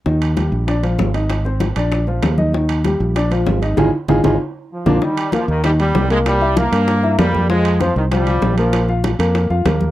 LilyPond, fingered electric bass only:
\new Staff \with { instrumentName = "Fingered electric bass" } { \clef bass \time 4/4 \key ees \major \tempo 4 = 194 ees,4. bes,,4. aes,,4~ | aes,,4. bes,,4. ees,4~ | ees,4. bes,,4. aes,,4 | aes,,8 r8 aes,,8 aes,,8 r4. bes,,8 |
r4. ees,4. c,4~ | c,4. g,4. f,4~ | f,4. c,4. bes,,4~ | bes,,4. f,4 f,8 ees,4 | }